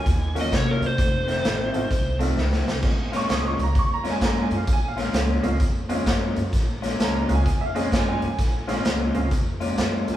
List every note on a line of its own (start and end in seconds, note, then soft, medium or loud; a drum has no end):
0.00 0.36 G#5 medium
0.06 0.49 D#2 medium
0.06 kick loud
0.06 closed hi-hat medium
0.35 0.51 D#3 medium
0.35 0.50 F#3 medium
0.35 0.50 A#3 medium
0.35 0.52 A#3 medium
0.35 0.52 C#4 medium
0.35 0.51 C#4 medium
0.35 0.51 F4 medium
0.35 0.52 F#4 medium
0.35 closed hi-hat medium
0.41 0.54 D#5 medium
0.52 0.80 C3 medium
0.52 0.87 D#3 medium
0.52 0.87 A#3 medium
0.52 0.87 C#4 medium
0.52 0.87 F#4 medium
0.52 kick medium
0.52 snare loud
0.52 closed hi-hat medium
0.57 0.70 C#5 medium
0.71 0.84 A#4 medium
0.81 0.97 C3 medium
0.81 closed hi-hat soft
0.86 2.19 C5 medium
0.98 1.42 F1 medium
0.98 kick loud
0.98 snare soft
0.98 closed hi-hat medium
1.28 1.43 F2 medium
1.28 1.43 D#3 medium
1.28 1.44 A3 medium
1.28 1.44 C4 medium
1.28 snare soft
1.28 closed hi-hat medium
1.44 1.72 A1 medium
1.44 1.79 F2 medium
1.44 1.79 D#3 medium
1.44 1.79 A3 medium
1.44 1.79 C4 medium
1.44 snare loud
1.44 closed hi-hat medium
1.74 1.90 A1 medium
1.74 1.89 A3 medium
1.74 1.89 C4 medium
1.74 1.89 D#4 medium
1.74 1.89 F4 medium
1.74 closed hi-hat medium
1.91 2.34 C2 medium
1.91 kick medium
1.91 closed hi-hat medium
2.19 2.35 F2 medium
2.19 2.36 D#3 medium
2.19 2.35 A3 medium
2.19 2.36 A3 medium
2.19 2.36 C4 medium
2.19 2.35 C4 medium
2.19 2.35 D#4 medium
2.19 2.35 F4 medium
2.19 closed hi-hat medium
2.37 2.65 C#2 medium
2.37 2.71 F2 medium
2.37 2.72 D#3 medium
2.37 2.72 A3 medium
2.37 2.72 C4 medium
2.37 snare medium
2.53 snare medium
2.67 2.83 C2 medium
2.67 snare medium
2.83 3.26 A#1 medium
2.83 3.10 G#3 soft
2.83 3.10 C4 soft
2.83 3.10 C#4 soft
2.83 3.10 F4 soft
2.83 kick loud
2.83 snare soft
2.83 crash medium
3.12 3.27 A#2 medium
3.12 3.28 G#3 medium
3.12 3.28 C#4 medium
3.12 3.29 F4 medium
3.12 snare soft
3.12 closed hi-hat medium
3.17 3.30 C#6 medium
3.29 3.57 C#2 medium
3.29 3.64 A#2 medium
3.29 3.64 G#3 medium
3.29 3.64 C#4 medium
3.29 3.64 F4 medium
3.29 snare loud
3.29 closed hi-hat medium
3.33 3.46 D#6 medium
3.48 3.61 C#6 medium
3.58 3.74 C#2 medium
3.58 closed hi-hat medium
3.63 3.77 A#5 medium
3.75 4.19 F2 medium
3.75 3.92 C#6 medium
3.75 kick loud
3.75 closed hi-hat medium
3.94 4.07 A#5 medium
4.04 4.20 A#2 medium
4.04 4.20 G#3 medium
4.04 4.21 C#4 medium
4.04 4.21 F4 medium
4.04 snare soft
4.04 closed hi-hat medium
4.11 4.23 G#5 medium
4.21 4.49 F#2 medium
4.21 4.56 A#2 medium
4.21 4.56 G#3 medium
4.21 4.56 C#4 medium
4.21 4.57 F4 medium
4.21 kick medium
4.21 snare loud
4.21 closed hi-hat medium
4.25 4.38 A#5 medium
4.42 4.54 G#5 medium
4.50 4.66 F#2 medium
4.50 closed hi-hat medium
4.57 4.70 F5 medium
4.67 5.11 A#1 medium
4.67 kick loud
4.67 closed hi-hat medium
4.73 4.85 G#5 medium
4.88 5.01 F5 medium
4.97 5.12 A#2 medium
4.97 5.13 G#3 medium
4.97 5.13 C#4 medium
4.97 5.14 F4 medium
4.97 snare soft
4.97 closed hi-hat medium
5.02 5.46 F5 medium
5.13 5.42 C#2 medium
5.13 5.49 A#2 medium
5.13 5.49 G#3 medium
5.13 5.49 C#4 medium
5.13 5.49 F4 medium
5.13 snare loud
5.13 closed hi-hat medium
5.43 5.59 C#2 medium
5.43 5.58 G#3 medium
5.43 5.58 C4 medium
5.43 5.59 C#4 medium
5.43 5.59 F4 medium
5.43 closed hi-hat medium
5.60 6.04 F2 medium
5.60 kick loud
5.60 closed hi-hat medium
5.89 6.05 A#2 medium
5.89 6.05 G#3 medium
5.89 6.05 C4 medium
5.89 6.05 C#4 medium
5.89 6.06 F4 medium
5.89 6.05 F4 medium
5.89 closed hi-hat medium
6.06 6.35 F#2 medium
6.06 6.41 A#2 medium
6.06 6.41 G#3 medium
6.06 6.41 C#4 medium
6.06 6.42 F4 medium
6.06 kick medium
6.06 snare loud
6.06 closed hi-hat medium
6.36 6.52 F#2 medium
6.36 closed hi-hat medium
6.53 6.97 A#1 medium
6.53 kick loud
6.53 snare soft
6.53 closed hi-hat medium
6.82 6.98 A#2 medium
6.82 6.98 G#3 medium
6.82 6.99 C#4 medium
6.82 6.99 F4 medium
6.82 snare soft
6.82 closed hi-hat medium
6.99 7.27 C#2 medium
6.99 7.34 A#2 medium
6.99 7.34 G#3 medium
6.99 7.35 C#4 medium
6.99 7.35 F4 medium
6.99 7.02 A5 medium
6.99 snare loud
6.99 closed hi-hat medium
7.04 7.32 A#5 medium
7.28 7.45 C#2 medium
7.28 7.44 G#3 medium
7.28 7.44 C4 medium
7.28 7.44 C#4 medium
7.28 7.45 F4 medium
7.28 closed hi-hat medium
7.34 7.62 G#5 medium
7.46 7.89 F2 medium
7.46 kick medium
7.46 closed hi-hat medium
7.61 7.66 E5 medium
7.66 7.94 F5 medium
7.75 7.91 A#2 medium
7.75 7.90 G#3 medium
7.75 7.91 G#3 medium
7.75 7.91 C4 medium
7.75 7.91 C#4 medium
7.75 7.92 F4 loud
7.75 7.91 G#4 medium
7.75 closed hi-hat medium
7.92 8.20 F#2 medium
7.92 8.27 A#2 medium
7.92 8.27 G#3 medium
7.92 8.27 C#4 medium
7.92 8.27 F4 medium
7.92 kick medium
7.92 snare loud
7.92 closed hi-hat medium
7.98 8.10 G#5 medium
8.08 8.13 G5 medium
8.13 9.46 G#5 medium
8.22 8.38 F#2 medium
8.22 closed hi-hat medium
8.39 8.82 A#1 medium
8.39 kick loud
8.39 snare soft
8.39 closed hi-hat medium
8.68 8.83 A#2 medium
8.68 8.84 G#3 medium
8.68 8.83 C4 medium
8.68 8.84 C#4 medium
8.68 8.85 F4 medium
8.68 8.84 F4 medium
8.68 snare soft
8.68 closed hi-hat medium
8.85 9.13 C#2 medium
8.85 9.20 A#2 medium
8.85 9.20 G#3 medium
8.85 9.20 C#4 medium
8.85 9.20 F4 medium
8.85 snare loud
8.85 closed hi-hat medium
9.15 9.31 C#2 medium
9.15 9.30 G#3 medium
9.15 9.30 C4 medium
9.15 9.30 C#4 medium
9.15 9.30 F4 medium
9.15 closed hi-hat medium
9.31 9.75 F2 medium
9.31 kick loud
9.31 closed hi-hat medium
9.60 9.75 A#2 medium
9.60 9.76 G#3 medium
9.60 9.76 C#4 medium
9.60 9.77 F4 medium
9.60 closed hi-hat medium
9.77 10.06 F#2 medium
9.77 10.12 A#2 medium
9.77 10.13 G#3 medium
9.77 10.13 C#4 medium
9.77 10.13 F4 medium
9.77 snare loud
9.77 closed hi-hat medium
10.08 10.17 F2 medium
10.08 closed hi-hat medium